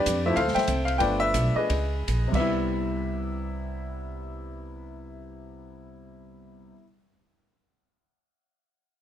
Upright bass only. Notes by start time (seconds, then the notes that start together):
0.06 F2
0.37 D2
0.56 muted upright bass stroke
0.68 C2
1.00 G1
1.34 B1
1.55 muted upright bass stroke
1.70 C#2
2.08 A#1
2.33 C2